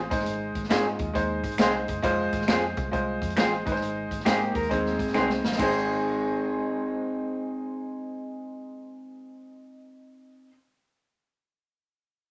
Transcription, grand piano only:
Already playing: G#4
0.10 G#3 D#4 C5
0.69 G#3 D#4 F4
1.13 G#3 D#4 C5
1.58 G#3 D#4 C5
2.02 G#3 F4 C5
2.47 G#3 F4 C5
2.91 G#3 F4 C5
3.36 G#3 F4 C5
3.65 G#3 D#4 B4
3.72 C5
4.25 G#3 D#4 C5
4.69 G#3 D#4 C5
5.14 G#3 D#4 B4
5.21 C5
5.55 G#3 D#4
5.62 C5

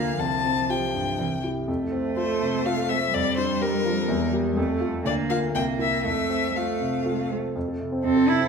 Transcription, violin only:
Already playing: F5
0.20 A5
0.70 G5
2.18 C5
2.66 F5
2.89 E5
3.14 D5
3.37 C5
3.62 A#4
5.06 D5
5.30 F5
5.55 G5
5.81 E5
6.05 E5
6.56 F5
8.05 A4

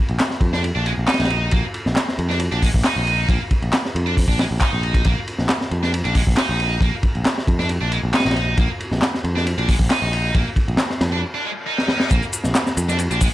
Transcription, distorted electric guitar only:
0.53 D4
0.75 D4
0.85 G#3
1.07 D#4
1.20 D#4
1.52 A#3
2.30 D4
2.52 D4
2.63 G#3
2.85 D#4
2.97 D#4
3.29 A#3
4.07 D4
4.29 D4
4.39 G#3
4.61 D#4
4.73 D#4
5.05 A#3
5.83 D4
6.05 D4
6.15 G#3
6.38 D#4
6.49 D#4
6.82 A#3
7.60 D4
7.81 D4
7.92 G#3
8.14 D#4
8.26 D#4
8.58 A#3
9.36 D4
9.58 D4
9.68 G#3
9.91 D#4
10.02 D#4
10.35 A#3
11.12 D4
11.34 D4
11.45 G#3
11.66 D#4
11.78 D#4
12.11 A#3
12.89 D4
13.11 D4
13.21 G#3

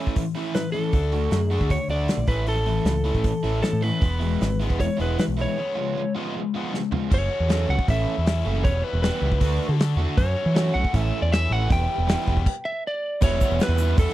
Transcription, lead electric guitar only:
0.55 B4
0.72 A4
1.40 G#4
1.71 C#5
1.90 D5
2.28 B4
2.48 A4
3.63 A4
3.82 B4
4.80 C#5
5.01 B4
5.19 B4
5.41 C#5
7.14 C#5
7.70 F#5
7.90 E5
8.64 C#5
8.84 B4
9.03 B4
10.17 C#5
10.74 F#5
10.96 E5
11.22 D5
11.32 E5
11.52 F#5
11.72 G5
12.65 E5
12.87 D5
13.23 C#5
13.63 B4
13.99 A4

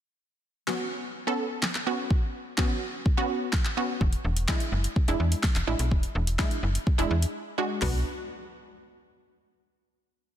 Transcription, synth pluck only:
0.67 B3 C#4 F#4
1.27 B3 C#4 A4
1.87 B3 C#4 F#4
2.58 B3 C#4 F#4
3.17 B3 C#4 F#4
3.77 B3 C#4 F#4
4.49 G#3 D4 E4
5.08 G#3 D4 E4
5.67 G#3 D4 E4
6.39 G#3 D4 E4
6.98 G#3 D4 E4
7.58 G#3 D4 F#4
7.82 B3 D4 F#4

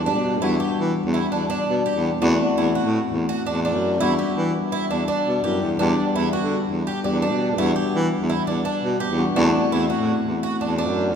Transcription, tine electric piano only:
0.08 G3 B3 D4 G4
0.43 G3 B3 D4 F#4
2.22 A3 C4 E4 F#4
4.01 G3 B3 D4 F#4
5.45 G3 B3 D4 E4
5.81 G3 B3 D4 G4
7.05 G3 B3 D4 G4
7.59 G3 B3 D4 F#4
9.19 G3 B3 D4 F#4
9.36 A3 C4 E4 F#4

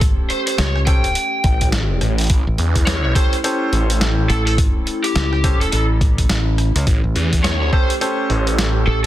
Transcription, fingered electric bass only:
Already playing: A1
0.59 C#2
2.47 A1
4.30 A1
5.15 C#2
5.73 A1
6.29 A1
6.75 C#2
7.04 A1
8.87 A1

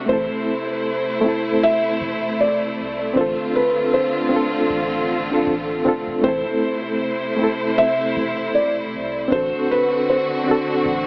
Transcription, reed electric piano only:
0.06 A3 C4
0.10 E4 A4
1.21 A3 C4
1.26 E4 A4
3.13 C4 D4
3.18 F4 A4
4.29 C4 D4
4.33 F4 A4
5.30 C4 D4 F4 A4
5.85 C4 D4 F4 A4
6.21 A3 C4
6.26 E4 A4
7.37 A3 C4
7.41 E4 A4
9.28 C4 D4
9.33 F#4 A4
10.44 C4 D4
10.48 F#4 A4

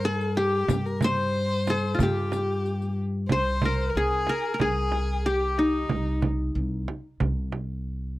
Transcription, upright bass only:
Already playing: G2
0.69 G2
1.99 G2
3.30 C2
3.95 C2
4.59 C2
5.90 C2
6.55 C2
7.21 C2

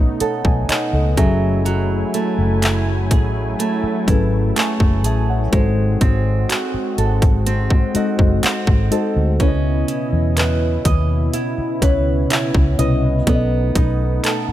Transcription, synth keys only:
0.21 C#5 F#5
0.45 D#5 G#5
0.69 C#5 D#5 F#5
0.94 A4 D#5
1.17 F#3 C#4 G#4 A4 E5 G#5
4.07 F#3 C#4 G#4 A4 B4
4.57 G#5 C#6
5.05 E5 A5
5.29 C#5 F#5
5.52 G#3 D#4 F#4 A4 C5
7.94 G#3 D#4 F#4 A4 D#5
8.43 F#5
8.91 G#3 D#4 F#4 A4 C5 D#5
9.39 C#3 C#4 E4 B4 C#5
9.48 D#5
11.81 C#3 C#4 E4 B4 C#5
12.78 B2 C#4 E4 B4 D#5
13.26 B2 B3 C#4 A4 D5
13.35 D#5

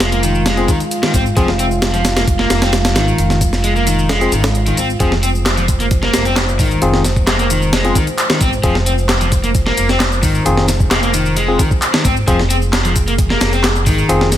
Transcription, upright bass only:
Already playing: F1
1.14 G#1
1.37 F1
2.50 F1
2.95 G#1
3.18 F1
4.32 G#1
4.78 G#1
5.00 F1
6.14 F1
6.59 G#1
6.82 F1
8.41 G#1
8.64 F1
9.78 F1
10.23 G#1
10.46 F1
12.05 G#1
12.28 F1
13.41 F1
13.87 G#1
14.09 F1

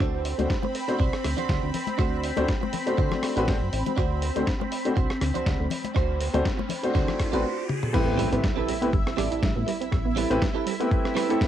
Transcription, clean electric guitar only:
0.00 D4 F#4 C5
0.63 muted clean electric guitar stroke
0.74 muted clean electric guitar stroke
0.99 D4 F#4 C5
1.23 muted clean electric guitar stroke
1.37 D4 F#4 C5
1.98 D4 F#4 C5
2.61 muted clean electric guitar stroke
2.73 muted clean electric guitar stroke
2.97 D4 F#4 C5
3.22 muted clean electric guitar stroke
3.36 D4 F#4 C5
3.96 D4 F#4 C5
4.60 muted clean electric guitar stroke
4.71 muted clean electric guitar stroke
4.96 D4 F#4 C5
5.21 muted clean electric guitar stroke
5.34 D4 F#4 C5
5.95 D4 F#4 C5
6.57 muted clean electric guitar stroke
6.69 muted clean electric guitar stroke
6.94 D4 F#4 C5
7.19 muted clean electric guitar stroke
7.32 D4 F#4 C5
8.18 C4 G4 A4 B4
8.43 muted clean electric guitar stroke
8.56 C4 G4 A4 B4
8.92 muted clean electric guitar stroke
9.17 C4 G4 A4 D5
9.67 muted clean electric guitar stroke
9.80 muted clean electric guitar stroke
10.16 C4 G4 A4 B4
10.54 C4 G4 A4 B4
10.90 muted clean electric guitar stroke
11.15 C4 G4 A4 B4

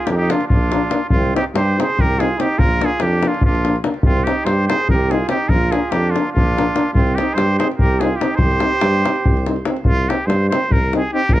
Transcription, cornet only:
0.06 G4
0.11 G4
0.17 G4
0.31 F4
0.48 F4
1.09 F4
1.36 G4
1.57 C5
1.81 C5
2.01 A#4
2.20 G#4
2.41 G4
2.59 A#4
2.85 G#4
3.02 G4
3.28 F4
3.45 F4
4.04 F4
4.24 G4
4.45 C5
4.68 C5
4.90 A#4
5.11 G#4
5.29 G4
5.49 A#4
5.71 G#4
5.91 G4
6.10 F4
6.32 F4
6.93 F4
7.15 G4
7.34 C5
7.59 C5
7.79 A#4
8.00 G#4
8.16 G4
8.36 C5
9.87 F4
10.09 G4
10.26 C5
10.49 C5
10.72 A#4
10.96 G#4
11.13 G4
11.33 A#4

